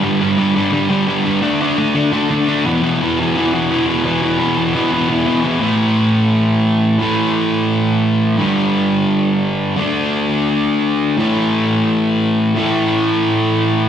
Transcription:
\new Staff \with { instrumentName = "Overdriven electric guitar" } { \clef bass \time 4/4 \key e \phrygian \tempo 4 = 172 <g, d g>8 <g, d g>8 <g, d g>8 <g, d g>8 <g, d g>8 <g, d g>8 <g, d g>8 <g, d g>8 | <d a d'>8 <d a d'>8 <d a d'>8 <d a d'>8 <d a d'>8 <d a d'>8 <d a d'>8 <e, b, e>8 | <e, b, e>8 <e, b, e>8 <e, b, e>8 <e, b, e>8 <e, b, e>8 <e, b, e>8 <e, b, e>8 <e, b, e>8 | <e, b, e>8 <e, b, e>8 <e, b, e>8 <e, b, e>8 <e, b, e>8 <e, b, e>8 <e, b, e>8 <e, b, e>8 |
\key d \mixolydian <a, e a>1 | <a, e a>1 | <g, d g>1 | <d a d'>1 |
<a, e a>1 | <a, e a>1 | }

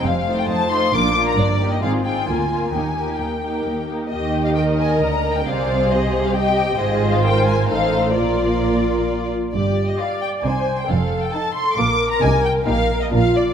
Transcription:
<<
  \new Staff \with { instrumentName = "Violin section" } { \time 3/4 \key ees \major \tempo 4 = 134 f''8. g''16 a''8 c'''8 d'''8. bes''16 | d''8. ees''16 f''8 g''8 aes''4 | aes''4 g''4. r8 | ees''8. f''16 g''8 aes''8 bes''8. g''16 |
f''4 ees''8. f''16 g''4 | ees''8. f''16 g''8 aes''8 f''4 | d''2~ d''8 r8 | d''8. ees''16 f''8 g''8 aes''8. g''16 |
f''8. g''16 a''8 c'''8 d'''8. bes''16 | aes''8 g''8 f''8. ees''16 f''8 d''8 | }
  \new Staff \with { instrumentName = "Violin section" } { \time 3/4 \key ees \major << { r8 <f' c''>4 <f' c''>8 <f' bes'>8 <f' bes'>8 | r8 <g' bes'>8 <f' aes'>8 <f' aes'>8 <f' bes'>8 <f' bes'>8 | <g' bes'>8 <g' bes'>4 <g' bes'>4 <g' bes'>8 | ees''2. |
d''4 c''4 ees''4 | c''2 c''4 | bes'2~ bes'8 r8 | r4 b'4 c''4 |
r4 a'4 bes'4 | aes'4 g'4 bes'4 | } \\ { r2. | r2. | r2. | g'4 bes'2 |
aes'2 g'4 | f'2 ees'4 | f'2~ f'8 r8 | r4 f'4 ees'4 |
r4 ees'4 f'4 | ees'4 ees'4 d'4 | } >> }
  \new Staff \with { instrumentName = "Viola section" } { \time 3/4 \key ees \major r8 <a ees'>4 <a ees'>8 <bes d'>8 <bes d'>8 | r8 <bes ees'>8 <c' ees'>8 <c' ees'>8 <bes f'>8 <bes f'>8 | <bes ees'>8 <bes ees'>4 <bes ees'>4 <bes ees'>8 | g'4 bes'2 |
c''4 g'2 | aes'4 bes'4 a'4 | f'2~ f'8 r8 | g'4 d''4 c''4 |
a'2 bes'4~ | bes'4 bes'4 f'4 | }
  \new Staff \with { instrumentName = "Cello section" } { \clef bass \time 3/4 \key ees \major f,4 f,4 bes,4 | g,4 aes,4 d,4 | ees,4 ees,4 ees,4 | ees2 d4 |
c2. | aes,2 a,4 | bes,2~ bes,8 r8 | g,4 r4 c4 |
f,4 r4 bes,4 | c4 bes,4 bes,4 | }
  \new Staff \with { instrumentName = "Double bass section" } { \clef bass \time 3/4 \key ees \major f,,4 r4 bes,,4 | g,,4 aes,,4 d,4 | ees,4 r2 | ees,2 d,4 |
c,2. | aes,,2 a,,4 | bes,,2~ bes,,8 r8 | g,,4 r4 c,4 |
f,,4 r4 bes,,4 | c,4 bes,,4 bes,,4 | }
>>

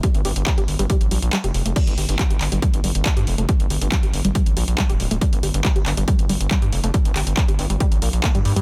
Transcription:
<<
  \new Staff \with { instrumentName = "Synth arpeggio sound" } { \clef bass \time 4/4 \key g \minor \tempo 4 = 139 g16 r16 g'16 r16 g16 g'16 r16 g16 g16 r16 g16 r16 g16 g'16 r16 a16 | g16 r16 g'16 r16 g16 g'16 r16 g16 g16 r16 g16 r16 g16 g'16 r16 a16 | g16 r16 g'16 r16 g16 g'16 r16 g16 g16 r16 g16 r16 g16 g'16 r16 a16 | g16 r16 g'16 r16 g16 g'16 r16 g16 g16 r16 g16 r16 g16 g'16 r16 a16 |
g16 r16 g'16 r16 g16 g'16 r16 g16 g16 r16 bes16 r16 bes16 g16 r16 g16 | }
  \new Staff \with { instrumentName = "Analog synth bass" } { \clef bass \time 4/4 \key g \minor r16 g,,16 g,,16 g,,16 r16 g,,16 g,,16 g,,16 r16 a,,16 bes,,16 bes,,16 r16 f,,16 f,,16 f,,16 | r16 g,,16 g,,16 g,,16 r16 g,,16 g,,16 g,,16 r16 g,,16 g,,16 g,,16 r16 g,16 f,,16 f,,16 | r16 g,,16 g,,16 g,,16 r16 g,,16 g,,16 g,,16 r16 a,,16 bes,,16 bes,,16 r16 d,,16 d,,16 d,,16 | r16 g,,16 g,,16 g,,16 r16 g,,16 g,,16 g,,16 r16 g,,16 g,,16 g,,16 r16 g,16 f,,16 f,,16 |
r16 g,,16 g,,16 g,,16 r16 g,,16 g,,16 g,,16 r16 a,,16 bes,,16 bes,,16 r16 g,16 g,16 g,16 | }
  \new DrumStaff \with { instrumentName = "Drums" } \drummode { \time 4/4 <hh bd>16 hh16 hho16 hh16 <hc hh bd>16 hh16 hho16 hh16 <hh bd>16 hh16 hho16 hh16 <hc hh>16 hh16 hho16 hh16 | <cymc hh bd>16 hh16 hho16 hh16 <hc hh bd>16 hh16 <hc hho>16 hh16 <hh bd>16 hh16 hho16 hh16 <hc hh bd>16 hh16 hho16 hh16 | <hh bd>16 hh16 hho16 hh16 <hc hh bd>16 hh16 hho16 hh16 <hh bd>16 hh16 hho16 hh16 <hc hh bd>16 hh16 hho16 hh16 | <hh bd>16 hh16 hho16 hh16 <hc hh bd>16 hh16 <hc hho>16 hh16 <hh bd>16 hh16 hho16 hh16 <hc hh bd>16 hh16 hho16 hh16 |
<hh bd>16 hh16 <hc hho>16 hh16 <hc hh bd>16 hh16 hho16 hh16 <hh bd>16 hh16 hho16 hh16 <hc hh bd>16 hh16 hho16 hh16 | }
>>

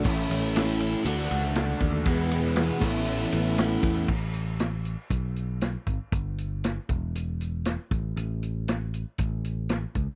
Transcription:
<<
  \new Staff \with { instrumentName = "Tonewheel organ" } { \time 4/4 \key a \major \tempo 4 = 118 <a cis' e' a'>2 <a d' fis' a'>2 | <b e' gis' b'>4. <cis' e' a' b'>2~ <cis' e' a' b'>8 | r1 | r1 |
r1 | }
  \new Staff \with { instrumentName = "Twelve-string acoustic guitar" } { \time 4/4 \key a \major <a, e a cis' e'>8 <a cis' e'>8 <a, e a cis' e'>8 <a cis' e'>8 <d a d' fis'>8 <a d' fis'>8 <d a d' fis'>4 | <e, b, e gis b e'>8 <e gis b e'>8 <e, b, e gis b e'>8 <b cis' e'>8 <e b cis' e'>8 <b cis' e'>8 <a, e b cis' e'>4 | r1 | r1 |
r1 | }
  \new Staff \with { instrumentName = "Overdriven electric guitar" } { \time 4/4 \key a \major <a, e a cis' e'>2 <d a d' fis'>2 | <e, b, e gis b e'>4. <a, e a cis' e'>2~ <a, e a cis' e'>8 | r1 | r1 |
r1 | }
  \new Staff \with { instrumentName = "Picked electric bass" } { \clef bass \time 4/4 \key a \major a,,8 a,,4. d,8 cis,4 dis,8 | e,4. a,,4 a,,4 e,8 | a,,2 b,,4. gis,,16 r16 | g,,4. e,,2 a,,8 |
a,,2 a,,4. cis,16 r16 | }
  \new DrumStaff \with { instrumentName = "Drums" } \drummode { \time 4/4 <cymc bd>8 cymr8 <cymr sn>8 cymr8 cymr8 cymr8 <cymr sn>8 <bd cymr>8 | <bd cymr>8 cymr8 <cymr sn>8 <cymc bd>8 r8 cymr8 <cymr sn>8 <bd cymr>8 | <cymc bd>8 hh8 <hh sn>8 hh8 <hh bd>8 hh8 <hh sn>8 <hh bd>8 | <hh bd>8 hh8 <hh sn>8 <hh bd>8 hh8 hh8 <hh sn>8 <hh bd>8 |
hh8 hh8 <hh sn>8 hh8 <hh bd>8 hh8 <hh sn>8 <hh bd>8 | }
>>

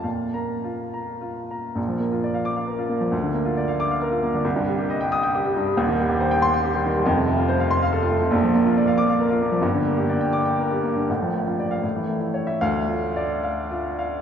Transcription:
<<
  \new Staff \with { instrumentName = "Upright piano" } { \time 6/8 \key bes \major \tempo 4. = 89 << { r8 bes''8. r4. r16 | r4. d'''8 r4 | r4. d'''8 r4 | r4. ees'''8 r4 |
r4. c'''8 r4 | \key d \minor r4. c'''8 r4 | r4. d'''8 r4 | r4. d'''8 r4 |
r4 r16 f''16 r4 r16 e''16 | f''8. r2 r16 | } \\ { f''4 f'8 bes''8 f'8 bes''8 | r2. | r2. | r2. |
r2. | r2. | r2. | r2. |
r2. | r8 f'8 d''8 f''8 f'8 f''8 | } >> }
  \new Staff \with { instrumentName = "Upright piano" } { \time 6/8 \key bes \major bes,8 bes8. r4. r16 | <bes,, bes,>16 f16 bes16 f'16 d''16 f''8 f''16 bes'16 f'16 bes16 f16 | d,16 d16 bes16 f'16 d''16 f''8 f''16 bes'16 f'16 bes16 d16 | c,16 g,16 g16 g'16 ees''16 g''8 g''16 g'16 g16 g,16 g16 |
<ees,, ees,>16 ees16 g16 g'16 c''16 g''8 g''16 g'16 g16 ees16 g16 | \key d \minor <f,, f,>16 c16 a16 f'16 c''16 f''8 f''16 a'16 f'16 a16 c16 | <bes,, bes,>16 f16 bes16 f'16 d''16 f''8 f''16 bes'16 f'16 bes16 f16 | <g,, g,>16 d16 bes16 g'16 d''16 g''8 g''16 bes'16 g'16 bes16 d16 |
<a,, a,>16 f16 a16 f'16 d''8 a,16 e16 a16 e'16 cis''8 | d,8 a8. r4. r16 | }
>>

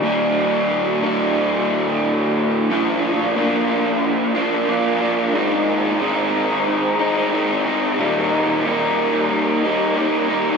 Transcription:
\new Staff \with { instrumentName = "Overdriven electric guitar" } { \time 4/4 \key ees \major \tempo 4 = 91 <ees, bes, ees g bes ees'>4. <ees, bes, ees g bes ees'>2~ <ees, bes, ees g bes ees'>8 | <bes, f bes d' f'>4 <f bes d' f'>4. <bes d' f'>8 <f bes d' f'>8 <bes d' f'>8 | <aes, ees aes c' ees'>4 <ees aes c' ees'>4. <aes c' ees'>8 <ees aes c' ees'>8 <aes c' ees'>8 | <ees, bes, ees g bes ees'>4 <ees g bes ees'>4. <ees g bes ees'>8 <ees g bes ees'>8 <ees g bes ees'>8 | }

